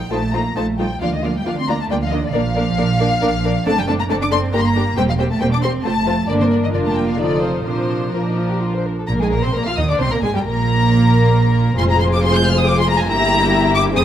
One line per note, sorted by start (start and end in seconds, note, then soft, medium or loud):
0.00 0.12 G5 medium
0.11 0.51 A#1 medium
0.11 0.20 A3 soft
0.11 0.34 A3 medium
0.11 0.20 D#4 soft
0.11 0.19 F4 soft
0.11 0.19 C5 soft
0.11 0.34 A5 medium
0.33 0.42 A3 soft
0.33 0.57 A#3 medium
0.33 0.42 D#4 soft
0.33 0.41 F4 soft
0.33 0.41 C5 soft
0.33 0.57 A#5 medium
0.56 0.96 A#1 medium
0.56 0.79 A3 medium
0.56 0.65 A3 soft
0.56 0.65 D#4 soft
0.56 0.64 F4 soft
0.56 0.64 C5 soft
0.56 0.65 A5 medium
0.79 0.87 G3 medium
0.79 0.87 A3 soft
0.79 0.87 D#4 soft
0.79 0.87 F4 soft
0.79 0.87 C5 soft
0.79 1.01 G5 medium
1.01 1.41 D2 medium
1.01 1.06 F3 medium
1.01 1.09 A#3 soft
1.01 1.10 D4 soft
1.01 1.10 F4 medium
1.01 1.10 D5 medium
1.01 1.12 F5 medium
1.13 1.24 D#3 medium
1.13 1.25 D#5 medium
1.23 1.35 F3 medium
1.23 1.32 A#3 soft
1.23 1.32 D4 soft
1.23 1.31 F4 soft
1.23 1.31 D5 soft
1.23 1.35 F5 medium
1.35 1.46 G3 medium
1.35 1.47 G5 medium
1.46 1.85 D2 medium
1.46 1.57 F3 medium
1.46 1.54 A#3 medium
1.46 1.54 D4 medium
1.46 1.54 F4 soft
1.46 1.54 D5 soft
1.46 1.58 F5 medium
1.58 1.62 C4 medium
1.58 1.69 C6 medium
1.68 1.77 A#3 soft
1.68 1.73 A#3 medium
1.68 1.76 D4 soft
1.68 1.77 F4 medium
1.68 1.77 D5 medium
1.68 1.80 A#5 medium
1.80 1.90 A3 medium
1.80 1.85 A5 medium
1.90 2.29 D2 medium
1.90 2.02 G3 medium
1.90 1.99 A#3 soft
1.90 1.99 D4 soft
1.90 1.98 F4 medium
1.90 1.98 D5 medium
1.90 1.96 G5 medium
2.01 2.12 F3 medium
2.01 2.13 F5 medium
2.12 2.23 D#3 medium
2.12 2.20 A#3 soft
2.12 2.20 D4 soft
2.12 2.20 F4 soft
2.12 2.20 D5 soft
2.12 2.23 D#5 medium
2.23 2.28 D3 medium
2.23 2.35 D5 medium
2.33 2.73 A#1 medium
2.33 3.64 F3 medium
2.33 2.42 A#3 medium
2.33 2.42 D4 medium
2.33 2.41 A#4 medium
2.33 2.42 D5 medium
2.33 3.67 F5 loud
2.55 2.65 A#3 medium
2.55 2.64 D4 medium
2.55 2.63 A#4 medium
2.55 2.63 D5 medium
2.77 3.17 A#1 medium
2.77 2.86 A#3 medium
2.77 2.86 D4 medium
2.77 2.85 A#4 medium
2.77 2.85 D5 medium
2.99 3.08 A#3 medium
2.99 3.09 D4 medium
2.99 3.07 A#4 medium
2.99 3.07 D5 medium
3.21 3.62 A#1 medium
3.21 3.30 A#3 medium
3.21 3.30 D4 medium
3.21 3.29 A#4 medium
3.21 3.29 D5 medium
3.44 3.52 A#3 medium
3.44 3.52 D4 medium
3.44 3.52 A#4 medium
3.44 3.53 D5 medium
3.65 4.05 F#1 medium
3.65 3.71 A3 medium
3.65 3.74 C4 medium
3.65 3.74 D4 medium
3.65 3.73 A4 medium
3.65 3.74 D5 medium
3.65 3.77 A5 loud
3.77 3.81 G3 medium
3.77 3.90 G5 medium
3.87 3.93 A3 medium
3.87 3.96 C4 medium
3.87 3.96 D4 medium
3.87 3.95 A4 medium
3.87 3.95 D5 medium
3.87 3.93 A5 medium
3.99 4.03 A#3 medium
3.99 4.04 A#5 medium
4.09 4.49 F#1 medium
4.09 4.14 A3 medium
4.09 4.18 C4 medium
4.09 4.18 D4 medium
4.09 4.18 A4 medium
4.09 4.17 D5 medium
4.09 4.14 A5 loud
4.21 4.25 D4 medium
4.21 4.26 D6 medium
4.31 4.40 C4 medium
4.31 4.53 C4 medium
4.31 4.40 D4 medium
4.31 4.39 A4 medium
4.31 4.39 D5 medium
4.31 4.39 C6 medium
4.52 4.92 G1 medium
4.52 4.62 A#3 medium
4.52 4.97 A#3 medium
4.52 4.62 D4 medium
4.52 4.61 G4 medium
4.52 4.60 A#4 medium
4.52 4.60 A#5 medium
4.60 4.67 C6 medium
4.67 4.97 A#5 medium
4.75 4.83 A#3 medium
4.75 4.83 D4 medium
4.75 4.84 G4 medium
4.75 4.83 A#4 medium
4.97 5.36 E1 medium
4.97 5.09 G3 medium
4.97 5.05 A#3 medium
4.97 5.06 C4 medium
4.97 5.05 G4 medium
4.97 5.05 C5 medium
4.97 5.02 G5 loud
5.09 5.20 F3 medium
5.09 5.14 F5 medium
5.18 5.30 G3 medium
5.18 5.27 A#3 medium
5.18 5.27 C4 medium
5.18 5.27 G4 medium
5.18 5.26 C5 medium
5.18 5.24 G5 medium
5.30 5.41 A3 medium
5.30 5.41 A5 medium
5.40 5.80 E1 medium
5.40 5.52 G3 medium
5.40 5.50 A#3 medium
5.40 5.50 C4 medium
5.40 5.49 G4 medium
5.40 5.48 C5 medium
5.40 5.45 G5 medium
5.52 5.63 D4 medium
5.52 5.57 D6 medium
5.63 5.71 A#3 medium
5.63 5.71 C4 medium
5.63 5.85 C4 medium
5.63 5.71 G4 medium
5.63 5.71 C5 medium
5.63 5.71 C6 medium
5.85 6.24 F1 medium
5.85 5.93 A3 medium
5.85 6.30 A3 medium
5.85 5.93 C4 soft
5.85 5.93 F4 medium
5.85 5.93 C5 medium
5.85 6.29 A5 medium
6.06 6.15 A3 medium
6.06 6.15 C4 soft
6.06 6.14 F4 soft
6.06 6.15 C5 soft
6.28 6.70 G1 medium
6.28 6.40 D3 medium
6.28 6.70 A#3 medium
6.28 6.70 D4 medium
6.28 6.70 A#4 medium
6.28 6.33 D5 medium
6.40 6.51 C3 medium
6.40 6.45 C5 medium
6.51 6.62 D3 medium
6.51 6.56 D5 medium
6.62 6.73 D#3 medium
6.62 6.67 D#5 medium
6.73 7.66 F1 medium
6.73 6.84 D3 medium
6.73 7.18 A#3 medium
6.73 7.18 D4 medium
6.73 7.18 F4 medium
6.73 7.19 A#4 medium
6.73 6.78 D5 medium
6.85 6.89 A3 medium
6.85 6.96 A5 medium
6.96 7.07 G3 medium
6.96 7.07 G5 medium
7.07 7.11 F3 medium
7.07 7.19 F5 medium
7.18 7.42 D3 medium
7.18 7.64 F3 medium
7.18 7.66 D#4 medium
7.18 7.65 F4 medium
7.18 7.66 A4 medium
7.18 7.42 D5 medium
7.42 7.64 C3 medium
7.42 7.65 C5 medium
7.65 8.86 A#1 medium
7.65 8.13 C3 medium
7.65 8.13 F3 soft
7.65 8.13 D4 soft
7.65 8.13 F4 soft
7.65 8.14 A#4 soft
7.65 8.13 C5 medium
8.13 8.85 A#2 soft
8.13 8.87 F3 medium
8.13 8.87 D4 soft
8.13 8.19 F4 medium
8.13 8.86 A#4 medium
8.28 8.39 D#4 soft
8.39 8.50 F4 medium
8.51 8.62 G4 soft
8.62 8.74 F4 soft
8.75 8.86 C5 medium
8.85 8.97 A#4 soft
8.99 9.03 A4 soft
9.08 9.19 A#1 medium
9.08 9.19 A#2 medium
9.08 9.20 A#3 medium
9.08 9.19 A#4 medium
9.08 9.13 A#5 medium
9.20 9.32 G#2 medium
9.20 9.32 G#3 medium
9.20 9.32 G#4 medium
9.20 9.26 G#5 medium
9.31 9.43 A#1 medium
9.31 9.43 A#2 medium
9.31 9.44 A#3 medium
9.31 9.43 A#4 medium
9.31 9.43 A#5 medium
9.42 9.55 C3 medium
9.42 9.48 C4 medium
9.42 9.54 C5 medium
9.42 9.55 C6 medium
9.54 9.59 A#1 medium
9.54 9.59 A#2 medium
9.54 9.66 A#3 medium
9.54 9.66 A#4 medium
9.54 9.66 A#5 medium
9.66 9.70 F3 medium
9.66 9.71 F4 medium
9.66 9.77 F5 medium
9.66 9.78 F6 medium
9.77 9.88 D#2 medium
9.77 9.89 D#3 medium
9.77 9.82 D#4 medium
9.77 9.82 D#5 medium
9.77 9.89 D#6 medium
9.88 10.00 D3 medium
9.88 10.00 D4 medium
9.88 9.99 D5 medium
9.88 9.95 D6 medium
9.99 10.11 C2 medium
9.99 10.11 C3 medium
9.99 10.11 C4 medium
9.99 10.11 C5 medium
9.99 10.11 C6 medium
10.11 10.23 A#2 medium
10.11 10.16 A#3 medium
10.11 10.16 A#4 medium
10.11 10.23 A#5 medium
10.22 10.27 G#1 medium
10.22 10.27 G#2 medium
10.22 10.28 G#3 medium
10.22 10.34 G#4 medium
10.22 10.34 G#5 medium
10.33 10.38 G2 medium
10.33 10.39 G3 medium
10.33 10.38 G4 medium
10.33 10.40 G5 medium
10.44 11.75 A#1 medium
10.44 11.75 A#2 medium
10.44 11.76 A#3 medium
10.44 11.76 A#4 medium
10.44 11.76 A#5 loud
11.78 13.05 F1 medium
11.78 13.05 F2 medium
11.78 13.06 G#3 medium
11.78 13.06 F4 medium
11.78 13.05 G#4 medium
11.78 13.05 C5 medium
11.78 11.83 C6 loud
11.91 12.01 A#5 medium
12.01 12.05 C6 medium
12.13 12.23 D6 medium
12.24 12.34 C6 loud
12.36 12.46 G6 loud
12.46 12.56 F6 medium
12.58 12.68 D#6 loud
12.68 12.78 D6 loud
12.80 12.89 C6 loud
12.89 12.99 A#5 loud
13.00 13.10 G#5 loud
13.09 13.95 G1 medium
13.09 13.95 G2 medium
13.09 13.92 A#3 medium
13.09 13.93 E4 medium
13.09 13.92 G4 medium
13.09 13.92 E5 medium
13.09 13.74 A#5 loud
13.75 13.83 D6 loud
13.95 14.05 F1 medium
13.95 14.05 F2 medium
13.95 14.05 C4 medium
13.95 14.05 G#4 medium
13.95 14.05 C5 medium
13.95 14.04 D#6 loud